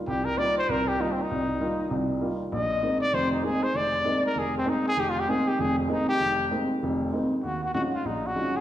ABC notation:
X:1
M:4/4
L:1/8
Q:"Swing" 1/4=195
K:Bbmix
V:1 name="Trumpet"
G B d c B G (3E C E- | E4 z4 | e3 d c E A c | d3 B A C E A |
(3G F G A G A C E G- | G2 z6 | [K:Ebm] G G G F E G2 A |]
V:2 name="Grand piano"
C,,2 [G,B,EF] z C,,2 [G,B,EF] z | C,,2 [G,B,EF] z [C,,C,]2 [G,B,EF] z | B,,,2 [A,B,CE] z [F,,,F,,]2 [A,B,CE] z | F,,,2 [A,B,CE] z F,,,2 [A,B,CE] z |
F,,,2 [A,B,CE] z [F,,,F,,]2 [A,B,CE] z | F,,,2 [A,B,CE] z [F,,,F,,]2 [A,B,CE] z | [K:Ebm] E,,2 [G,A,DEF] z B,,,2 [G,A,DEF] z |]